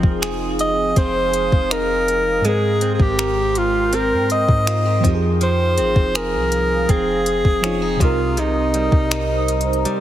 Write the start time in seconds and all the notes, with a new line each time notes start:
Already playing: F3 C4 D#4 G#4 F5 D#6
0.03 F1, kick
0.22 G#4, finger snap, closed hi-hat
0.59 D#5, closed hi-hat
0.96 F1 C4 C5, kick, closed hi-hat
1.33 closed hi-hat
1.52 F1, kick
1.71 D#4 A#4, finger snap, closed hi-hat
2.08 closed hi-hat
2.41 G#2 G#3 A#4 G5 C6, closed hi-hat
2.46 C4 G#4 A#4
2.81 C4, closed hi-hat
2.95 G#4
3.00 G#1 G4, kick
3.19 A#4, finger snap, closed hi-hat
3.55 F4, closed hi-hat
3.93 C4 A#4, closed hi-hat
4.12 G#2
4.30 D#5, closed hi-hat
4.49 G#2, kick
4.67 F4, finger snap, closed hi-hat
4.86 G4
5.00 F2 F3 C4 G#4 F5 D#6, kick
5.05 D#4 G4, closed hi-hat
5.14 G#4
5.41 F3 C5, closed hi-hat
5.78 G#1 C4, closed hi-hat
5.96 F1, kick
6.15 G#4 A#4, finger snap, closed hi-hat
6.34 C2
6.52 closed hi-hat
6.89 F1 C4 G#4, kick, closed hi-hat
7.26 closed hi-hat
7.45 F1, kick
7.61 F3 C4 C#4 D#4 F4, finger snap, closed hi-hat
7.82 D#4
7.97 C2 C3 C4 C5 A#5, kick
8.01 D#4 F4 A#4, closed hi-hat
8.37 C3 D#4, closed hi-hat
8.74 G3, closed hi-hat
8.92 C2, kick
9.11 D#4, finger snap, closed hi-hat
9.48 closed hi-hat
9.61 closed hi-hat
9.73 closed hi-hat
9.85 G3, closed hi-hat